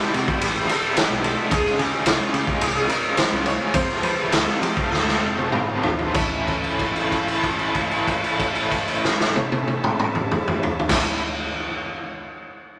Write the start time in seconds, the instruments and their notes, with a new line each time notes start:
Already playing: overdriven electric guitar C3 E3, sitar G4, tonewheel organ G4 C5 E5 C6
0.00 overdriven electric guitar G3 C4 E4, snare
0.14 picked electric bass C3, sitar F#4, muted overdriven electric guitar stroke, ride
0.27 overdriven electric guitar G3 C4 E4, kick
0.41 picked electric bass A1, sitar G4, ride
0.67 overdriven electric guitar E3 G3 C4 E4, sitar A4, ride
0.95 overdriven electric guitar C3 E3 G3 C4 E4, sitar G4, snare, ride
1.08 picked electric bass B1, overdriven electric guitar G3 C4 E4
1.23 overdriven electric guitar E3 G3 C4 E4, sitar A4, ride
1.36 overdriven electric guitar G3 C4 E4
1.49 picked electric bass C#2, overdriven electric guitar C#3 F3 G#3 C#4 F4, tonewheel organ G#4 C#5 F5 C#6, sitar G#4, kick, ride
1.66 snare
1.77 picked electric bass C#3, overdriven electric guitar F3 G#3 C#4 F4, sitar G4, ride
2.05 picked electric bass C2, overdriven electric guitar C#3 F3 G#3 C#4 F4, sitar F4, snare, ride
2.18 overdriven electric guitar G#3 C#4 F4
2.33 picked electric bass C#3, sitar G4, muted overdriven electric guitar stroke, ride
2.46 overdriven electric guitar G#3 C#4 F4, kick
2.61 picked electric bass C2, sitar G#4, ride
2.67 sitar G4
2.75 sitar G#4
2.88 overdriven electric guitar F3 G#3 C#4 F4, sitar A#4, ride
3.15 overdriven electric guitar C#3 F3 G#3 C#4 F4, sitar C5, snare, ride
3.31 picked electric bass C2, overdriven electric guitar G#3 C#4 F4
3.45 overdriven electric guitar F3 G#3 C#4 F4, sitar C#5, ride
3.59 overdriven electric guitar G#3 C#4 F4
3.73 overdriven electric guitar F2 C3 F3 A3 C4 F4, picked electric bass F2, tonewheel organ A4 C5 C6, sitar C5, kick, ride
3.89 snare
4.02 overdriven electric guitar F3 A3 C4 F4, picked electric bass F3, sitar B4, ride
4.31 picked electric bass D2, overdriven electric guitar F2 C3 F3 A3 C4 F4, sitar A4, snare, ride
4.46 overdriven electric guitar F3 A3 C4 F4, snare
4.61 picked electric bass F3, sitar G4, muted overdriven electric guitar stroke, ride
4.75 overdriven electric guitar F3 A3 C4 F4, kick
4.91 picked electric bass D2, sitar A4, snare
5.08 snare
5.21 picked electric bass F1, overdriven electric guitar F3 A3 C4 F4
5.38 high tom
5.51 picked electric bass G1, overdriven electric guitar F2 C3 F3 A3 C4 F4, mid tom
5.67 overdriven electric guitar F3 A3 C4 F4
5.83 picked electric bass A1, overdriven electric guitar F3 A3 C4 F4, floor tom
5.98 overdriven electric guitar F3 A3 C4 F4, floor tom
6.14 picked electric bass A1, overdriven electric guitar A2 E3 A3 C#4, tonewheel organ C#4 E4 A4 E5 A5, sitar C#5, kick, crash
6.18 overdriven electric guitar E4
6.47 kick, crash
6.64 crash
6.79 kick, crash
6.96 crash
7.12 kick, crash
7.28 crash
7.43 kick, crash
7.59 crash
7.75 kick, crash
7.91 crash
8.07 kick, crash
8.24 crash
8.40 kick, crash
8.55 crash
8.71 kick, crash
8.88 crash
9.05 snare
9.21 snare
9.36 high tom
9.52 high tom
9.68 high tom
9.84 mid tom
9.99 mid tom
10.15 mid tom
10.31 mid tom
10.48 mid tom
10.63 floor tom
10.79 floor tom
10.89 picked electric bass A1, overdriven electric guitar A2 E3 A3 C#4, tonewheel organ C#4 E4 A4 E5 A5, sitar C#5, kick, snare, crash
10.93 overdriven electric guitar E4